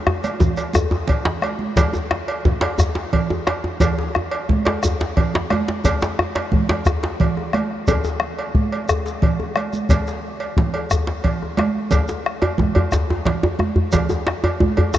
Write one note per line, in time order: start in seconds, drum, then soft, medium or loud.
0.07 bombo rim loud
0.07 djembe slap soft
0.07 djembe tone loud
0.07 high conga soft
0.23 bombo rim soft
0.23 cowbell medium
0.23 high conga medium
0.23 shekere soft
0.40 bombo low loud
0.40 djembe slap soft
0.40 djembe tone loud
0.40 low conga medium
0.40 shekere soft
0.57 cowbell soft
0.57 djembe slap soft
0.57 high conga soft
0.57 djembe tone medium
0.57 shekere soft
0.73 bombo rim loud
0.73 high conga medium
0.73 djembe tone loud
0.73 djembe bass medium
0.73 shekere medium
0.91 bombo rim soft
0.91 djembe slap medium
0.91 djembe tone medium
0.91 high conga soft
1.08 bombo low loud
1.08 cowbell medium
1.08 djembe slap soft
1.08 high conga soft
1.08 low conga medium
1.25 bombo rim soft
1.25 djembe slap loud
1.25 djembe tone medium
1.25 low conga soft
1.42 bombo rim medium
1.42 cowbell medium
1.42 djembe slap soft
1.42 high conga soft
1.59 bombo rim soft
1.59 high conga medium
1.76 bombo low medium
1.76 cowbell medium
1.76 djembe slap soft
1.76 djembe slap medium
1.76 low conga medium
1.76 djembe bass medium
1.76 shekere soft
1.93 djembe slap soft
1.93 djembe tone medium
1.93 shekere soft
2.11 bombo rim loud
2.11 djembe slap soft
2.11 djembe slap medium
2.28 cowbell medium
2.45 bombo low loud
2.45 djembe slap soft
2.45 high conga medium
2.45 djembe tone medium
2.45 low conga medium
2.61 cowbell medium
2.61 djembe slap loud
2.61 djembe tone medium
2.78 bombo rim medium
2.78 djembe slap soft
2.78 djembe tone medium
2.78 high conga soft
2.78 djembe bass medium
2.78 shekere medium
2.95 djembe slap medium
2.95 high conga soft
3.13 bombo low medium
3.13 cowbell medium
3.13 djembe slap soft
3.13 low conga medium
3.30 bombo rim soft
3.30 djembe slap soft
3.30 high conga soft
3.30 djembe tone medium
3.47 bombo rim medium
3.47 cowbell medium
3.47 djembe slap medium
3.64 bombo rim soft
3.64 djembe tone medium
3.80 bombo low medium
3.80 cowbell medium
3.80 djembe slap medium
3.80 djembe slap soft
3.80 low conga medium
3.80 djembe bass medium
3.80 shekere soft
3.98 djembe slap medium
3.98 djembe tone soft
4.15 bombo rim loud
4.15 djembe slap soft
4.15 djembe tone medium
4.31 cowbell medium
4.49 bombo low loud
4.49 djembe slap soft
4.49 high conga medium
4.49 low conga medium
4.65 cowbell medium
4.65 djembe slap loud
4.65 djembe tone medium
4.83 bombo rim medium
4.83 djembe slap soft
4.83 high conga soft
4.83 djembe tone medium
4.83 djembe bass medium
4.83 shekere medium
5.00 djembe slap medium
5.00 high conga soft
5.17 bombo low medium
5.17 cowbell medium
5.17 djembe slap soft
5.17 low conga medium
5.33 bombo rim soft
5.33 djembe slap soft
5.33 djembe slap loud
5.33 high conga soft
5.33 djembe tone medium
5.50 bombo rim medium
5.50 cowbell medium
5.50 high conga medium
5.50 djembe tone medium
5.68 bombo rim soft
5.68 djembe slap medium
5.84 bombo low medium
5.84 cowbell medium
5.84 djembe slap soft
5.84 djembe bass medium
5.84 low conga medium
5.84 shekere medium
6.02 djembe slap medium
6.02 djembe slap loud
6.02 djembe tone medium
6.02 shekere soft
6.19 bombo rim loud
6.19 djembe slap soft
6.19 djembe tone medium
6.35 cowbell medium
6.35 djembe slap medium
6.52 bombo low loud
6.52 djembe slap soft
6.52 high conga medium
6.52 low conga medium
6.69 cowbell soft
6.69 djembe slap loud
6.69 djembe tone medium
6.85 bombo rim loud
6.85 djembe slap soft
6.85 high conga soft
6.85 djembe tone medium
6.85 djembe bass medium
6.85 shekere medium
7.03 djembe slap medium
7.03 high conga soft
7.20 bombo low loud
7.20 cowbell medium
7.20 djembe slap soft
7.20 low conga medium
7.37 bombo rim soft
7.37 djembe slap soft
7.37 djembe tone medium
7.37 high conga soft
7.53 bombo rim medium
7.53 cowbell medium
7.53 high conga medium
7.71 bombo rim soft
7.88 bombo low loud
7.88 cowbell medium
7.88 low conga medium
7.88 djembe bass medium
7.88 shekere medium
8.04 djembe slap medium
8.04 djembe tone medium
8.04 shekere soft
8.20 bombo rim loud
8.20 djembe slap soft
8.20 high conga soft
8.39 cowbell soft
8.55 bombo low loud
8.55 high conga medium
8.72 cowbell soft
8.89 bombo rim loud
8.89 djembe bass medium
8.89 shekere medium
9.06 djembe slap soft
9.06 shekere soft
9.22 bombo low loud
9.22 cowbell soft
9.22 high conga soft
9.22 low conga medium
9.40 djembe slap soft
9.40 djembe tone medium
9.40 low conga soft
9.56 bombo rim loud
9.56 cowbell soft
9.56 djembe slap soft
9.56 high conga medium
9.73 bombo rim soft
9.73 high conga medium
9.73 shekere soft
9.89 bombo low loud
9.89 cowbell medium
9.89 djembe slap soft
9.89 djembe bass medium
9.89 low conga medium
9.89 shekere medium
10.07 djembe slap medium
10.07 shekere soft
10.25 djembe slap soft
10.40 cowbell soft
10.57 bombo low loud
10.57 djembe slap medium
10.57 djembe slap soft
10.57 high conga medium
10.57 low conga medium
10.74 cowbell soft
10.74 djembe tone medium
10.91 bombo rim loud
10.91 djembe slap soft
10.91 high conga soft
10.91 djembe bass medium
10.91 shekere medium
11.07 djembe slap medium
11.07 high conga soft
11.24 bombo low medium
11.24 cowbell soft
11.24 djembe slap soft
11.24 low conga medium
11.41 bombo rim soft
11.41 djembe slap soft
11.41 high conga soft
11.41 djembe tone medium
11.57 bombo rim medium
11.57 cowbell medium
11.57 djembe slap medium
11.57 high conga medium
11.75 bombo rim soft
11.91 bombo low medium
11.91 cowbell medium
11.91 djembe slap soft
11.91 low conga medium
11.91 djembe bass medium
11.91 shekere medium
12.08 djembe slap medium
12.08 djembe tone soft
12.08 shekere soft
12.25 bombo rim medium
12.25 djembe slap soft
12.42 cowbell medium
12.42 djembe tone loud
12.58 bombo low medium
12.58 djembe slap soft
12.58 high conga medium
12.58 djembe tone medium
12.58 low conga medium
12.75 cowbell medium
12.75 djembe tone medium
12.75 djembe bass medium
12.92 bombo rim medium
12.92 djembe slap soft
12.92 djembe slap medium
12.92 high conga soft
12.92 djembe bass medium
12.92 shekere medium
13.09 djembe slap medium
13.09 high conga soft
13.09 djembe tone medium
13.25 bombo low medium
13.25 cowbell medium
13.25 djembe slap medium
13.25 low conga medium
13.43 bombo rim soft
13.43 djembe slap soft
13.43 djembe tone medium
13.43 djembe tone loud
13.59 bombo rim medium
13.59 high conga medium
13.59 djembe tone medium
13.76 bombo rim soft
13.76 djembe bass medium
13.92 bombo low medium
13.92 cowbell medium
13.92 djembe slap medium
13.92 djembe slap soft
13.92 low conga medium
13.92 djembe bass medium
13.92 shekere medium
14.09 djembe slap medium
14.09 djembe tone medium
14.09 shekere soft
14.27 bombo rim medium
14.27 djembe slap medium
14.27 djembe slap soft
14.44 cowbell medium
14.44 djembe tone loud
14.60 bombo low medium
14.60 djembe slap soft
14.60 high conga medium
14.60 djembe tone medium
14.77 cowbell medium
14.77 djembe tone medium
14.77 djembe bass medium
14.94 bombo rim medium
14.94 djembe slap medium
14.94 djembe slap soft
14.94 djembe bass medium
14.94 shekere medium